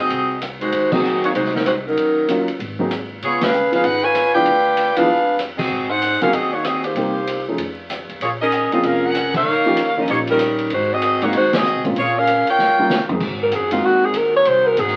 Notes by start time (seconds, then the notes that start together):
0.00 C4 F#4 G#4 D#5
0.10 C2, ride
0.41 cross-stick, hi-hat pedal, ride
0.61 G#3 D#4 F#4 C5, ride
0.72 D#2, ride
0.92 F#3 A#3 C4 D#4 F#4 G#4 D#5, kick, crash
1.04 hi-hat pedal
1.24 A#3 D#4 F#4 C#5, ride
1.34 C2 G#3 D#4 F#4 C5, ride
1.45 snare
1.55 F#3 C4 D#4 A#4, snare
1.66 G#3 D#4 F#4 C5, cross-stick, hi-hat pedal, ride
1.88 F#3 C#4 D#4 A#4
1.97 D#2, ride
2.28 F#3 A#3 C#4 D#4 F4, hi-hat pedal, ride
2.48 muted upright bass stroke, ride
2.59 G#1, ride
2.79 F#3 A#3 C4 D#4 G#4
2.91 cross-stick, hi-hat pedal, ride
3.21 C#2 B3 F4 G#4 C#5, ride
3.41 C#4 G#4 B4 F5, snare, ride
3.53 hi-hat pedal
3.72 F3 B3 C#4 D#4 G#4 B4 F5, muted upright bass stroke, ride
3.83 G#1 D#4 G#4 B4 F#5, ride
4.04 F4 B4 C#5 G#5
4.15 cross-stick, hi-hat pedal, ride
4.35 F3 B3 D4 E4 F4 G#4 B4 D5 G5
4.45 D2, ride
4.77 hi-hat pedal, ride
4.96 D#2 F3 B3 D4 E4 G#4 B4 F5, ride
5.08 F2
5.39 cross-stick, hi-hat pedal, ride
5.58 C4 F#4 G#4 D#5, kick, crash
5.69 G#2
5.90 D#4 G#4 C5 F#5
6.02 hi-hat pedal, ride
6.21 F#3 A#3 C4 C#4 D#4 F#4 G#4 A#4 F5, muted upright bass stroke, ride
6.33 D#2 C4 F#4 G#4 D#5, ride
6.53 A#3 D#4 F#4 C#5
6.64 C4 F#4 G#4 D#5, cross-stick, hi-hat pedal, ride
6.84 A#3 D#4 G4 C5, ride
6.95 C2 G3 A#3 C4 D#4 G4, ride
7.27 hi-hat pedal, ride
7.48 F3 A3 C#4 D#4 G#4
7.58 F2, ride
7.90 cross-stick, hi-hat pedal, ride
8.09 F2, ride
8.20 A#1 A#3 F4 G#4 C#5, ride
8.41 C#4 G#4 A#4 D#5
8.52 hi-hat pedal, ride
8.71 F3 A#3 C4 C#4 F4 G#4 D#5, muted upright bass stroke, ride
8.82 F1 C#4 G#4 A#4 F5, ride
9.05 C#4 G#4 A#4 F#5
9.15 cross-stick, hi-hat pedal, ride
9.34 D#4 A#4 C#5 F5, kick, crash
9.45 D#2
9.66 F3 A#3 C#4 D#4 G4
9.77 hi-hat pedal, ride
9.97 F3 A#3 C#4 D#4 F4 G4 A#4 D#5
10.08 A#1 A#3 D#4 G4 C#5, ride
10.27 G3 C#4 D#4 A#4, ride
10.39 cross-stick, hi-hat pedal, ride
10.58 ride
10.70 G#1 G#3 D#4 F#4 C5, ride
10.94 C4 F#4 G#4 D#5
11.02 hi-hat pedal, ride
11.22 G#3 A#3 C4 D#4 F#4 C#5, ride
11.33 D#2 G#3 D#4 F#4 C5, ride
11.53 C4 F#4 G#4 D#5, snare, ride
11.65 hi-hat pedal
11.74 C2
11.84 A1 G#3 A#3 C4 C#4 F4, kick, ride
11.96 A#1 A#3 F4 G#4 C#5, ride
12.18 C#4 G#4 A#4 F5
12.27 hi-hat pedal, ride
12.47 F4 A#4 C#5 G5, muted upright bass stroke, ride
12.59 D#2, snare
12.79 G3 A#3 C#4 D#4 F4
12.90 snare, hi-hat pedal
13.09 G#3 A#3 C4 D#4 G#4, muted upright bass stroke, floor tom
13.20 G#2 D#3 G#3 C4 F#4, kick, crash
13.43 A#4
13.52 F#2 G#4, hi-hat pedal, ride
13.71 G#3 A#3 C4 D#4 F4 F#4, ride
13.84 F2 F#4
14.05 G#4
14.14 D#2 A#4, hi-hat pedal, ride
14.36 C#5
14.45 C2 C5, ride
14.67 A#4
14.77 G#1 G#4, hi-hat pedal, ride
14.87 snare